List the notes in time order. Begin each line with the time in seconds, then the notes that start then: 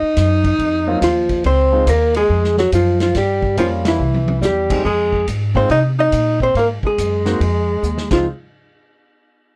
Already playing: D#4 D#5
0.02 muted upright bass stroke
0.17 F#2, snare, hi-hat pedal, ride
0.44 kick, ride
0.59 F2, ride
0.87 F#3 A#3 C4 F4
1.01 D#2 F3 F4, snare, hi-hat pedal, ride
1.29 kick, ride
1.44 C#2 C4 C5, ride
1.72 G#3 C4 D#4 F4
1.87 D#2 A#3 A#4, hi-hat pedal, ride
2.14 G#3 G#4, ride
2.29 F2
2.44 snare
2.58 F#3 F#4, snare
2.72 F#2 F3 F4, hi-hat pedal, ride
3.00 F3 F4, snare, ride
3.15 G2 G3 G4, snare, ride
3.42 kick
3.57 F2 F3 G3 A#3 C#4 F4, hi-hat pedal, ride
3.85 E3 E4, snare, ride
3.99 C2
4.14 high tom
4.28 high tom
4.41 E2 G3 G4, snare, hi-hat pedal
4.70 G#3 C4 D#4 G#4, kick, crash
4.85 F2 G#3 G#4
5.12 kick
5.28 G#2, hi-hat pedal, ride
5.55 G#3 C4 D#4 F4 C5, kick
5.70 C3 D#4 D#5, ride
5.99 D#4 D#5
6.12 A#2, hi-hat pedal, ride
6.40 C4 C5, kick
6.55 G#2 A#3, ride
6.59 A#4
6.83 G#3 G#4, muted upright bass stroke, kick
6.98 F#2, hi-hat pedal, ride
7.25 A#3 C4 D#4 F#4, snare, ride
7.40 F2, ride
7.83 D#2, hi-hat pedal
7.98 snare
8.11 C#2 F3 G#3 C4 D#4 F4, kick, snare, crash